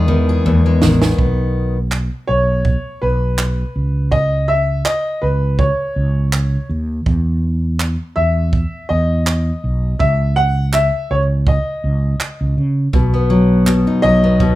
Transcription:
Already playing: E2 G#3 B3 G#4 E5
0.08 E2 D#3
0.29 G#4
0.46 D#2 E2
0.66 G#3
0.82 A1 D#3, snare
1.02 B3, snare
1.19 B1, kick
1.92 clap
2.27 B1 C#5
2.65 kick
3.02 B1 B4
3.38 clap
3.76 C#2
4.12 D#5, kick
4.48 E5
4.85 D#5, clap
5.22 C#2 B4
5.59 C#5, kick
5.96 C#2
6.33 clap
6.69 D#2
7.06 E2, kick
7.80 clap
8.16 E2 E5
8.53 kick
8.89 E2 D#5
9.27 clap
9.64 B1
9.99 C#2 E5, kick
10.36 F#5
10.73 E5, clap
11.11 C#2 C#5
11.47 D#5, kick
11.84 C#2
12.20 clap
12.41 C#2
12.57 C#3
12.93 B1 B2, kick
13.14 B3
13.30 F#3
13.66 B2, clap
13.87 D#4
14.02 B1 F#3 D#5
14.24 B3
14.40 B2, kick

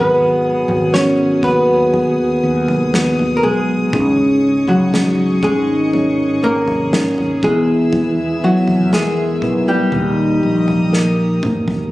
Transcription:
Already playing: G#1 G#2 D#3 F#3 B3 F#4 G#4 B4 F#5 G#5 D#6
0.68 G#1, floor tom
0.92 B3 C#4 F#4 A#4 C#5, snare
1.42 D#2 B3 F#4 G#4 B4, kick, floor tom
1.93 B3 F#4 G#4, floor tom
2.43 D#2
2.68 floor tom
2.93 B3 F#4 B4, snare
3.19 floor tom
3.37 A#4
3.43 B1 G#3 G#4
3.93 C#2 G#2 C#3 C#4 D#4 G#4 D#5 C#6, kick, floor tom
4.68 C#2 F#3 F#4, floor tom
4.93 C#4 D#4 G#4, snare
5.42 G#1 D#3 G#3 C#4 D#4 G#4, kick, floor tom
5.93 C#4 D#4 C#5, floor tom
6.43 G#1 A#3 A#4
6.68 floor tom
6.92 C#4 D#4 A#4, snare
7.18 floor tom
7.41 E2 B2 E3 G#3 B3 E4 G#4 E5 G#5 E6, kick
7.93 floor tom
8.44 F#3 F#4
8.67 E2, floor tom
8.93 G#3 B3 E4 G#4 A#4, snare
9.42 B1 B3 E4 B4, kick
9.68 G3 G4
9.91 D#2 A#2 D#3 A#3 D#4 G4 D#5 A#5 D#6, floor tom
10.43 A#1
10.68 floor tom
10.92 A#3 D#4 A#4, snare
11.43 E1, mid tom
11.68 floor tom

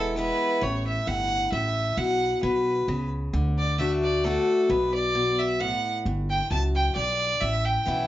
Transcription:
Already playing: E1 E2 E3 G#3 B3 E4 A4
0.16 E3 G#3 B3 E4 B4
0.61 A1 A2 C#5
0.87 E5
1.07 G1 G2 F#5
1.52 A1 A2 E5
1.97 B1 B2 F#5
2.43 B1 B2 B4
2.88 C#2 C#3
3.33 D2 D3
3.58 D5
3.78 D3 A3 D4 F#4 E5
4.03 D5
4.24 D3 A3 D4 F#4 A4
4.70 B1 B2 B4
4.94 D5
5.15 B2
5.39 E5
5.60 A2 F#5
6.05 G1 G2
6.29 G5
6.51 C#2 F#2 A5
6.75 G5
6.95 B1 G2 D5
7.40 A1 A2 E5
7.65 G5
7.86 B1 E3 B3 C#4 E4

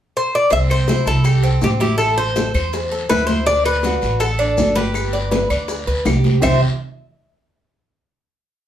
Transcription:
0.17 C5
0.35 D5
0.50 C2 C4 E5, high bongo, high conga, long guiro, maracas
0.69 C5, high bongo, high conga, claves, maracas
0.88 E4, high bongo, high conga, short guiro, maracas
1.06 C2 A4, high bongo, high conga, short guiro, maracas
1.24 G4, high bongo, high conga, long guiro, claves, maracas
1.43 C4, high conga, maracas
1.61 A1 G4, high bongo, low bongo, high conga, short guiro, maracas
1.80 E4 G4, high bongo, high conga, short guiro, maracas
1.98 A4, high bongo, high conga, long guiro, claves, maracas
2.17 C5, high bongo, high conga, maracas
2.36 A4, high bongo, high conga, short guiro, maracas
2.54 E2 C5, high bongo, high conga, short guiro, claves, maracas
2.73 high bongo, high conga, long guiro, maracas
2.92 A4, high conga, maracas
3.09 D2 E4 B4, high bongo, low bongo, high conga, short guiro, claves, maracas
3.27 C5, high bongo, high conga, short guiro, maracas
3.46 D4 D5, high bongo, high conga, long guiro, maracas
3.65 B4, high bongo, high conga, claves, maracas
3.83 F#4, high bongo, high conga, short guiro, maracas
4.02 A1, high bongo, high conga, short guiro, maracas
4.20 A4, high bongo, high conga, long guiro, claves, maracas
4.39 D4, high conga, maracas
4.57 G1, high bongo, low bongo, high conga, short guiro, maracas
4.75 G4 B4, high bongo, high conga, short guiro, maracas
4.94 high bongo, high conga, long guiro, claves, maracas
5.13 D5, high bongo, high conga, maracas
5.31 B4, high bongo, high conga, short guiro, maracas
5.50 D2 D5, high bongo, high conga, short guiro, claves, maracas
5.68 high bongo, high conga, long guiro, maracas
5.87 D2 B4, high conga, maracas
6.05 C2 G4, high bongo, low bongo, high conga, short guiro, claves, maracas
6.24 high bongo, high conga, short guiro, maracas
6.42 C2 C4 G4 C5 E5, low bongo, low conga, long guiro, claves, maracas

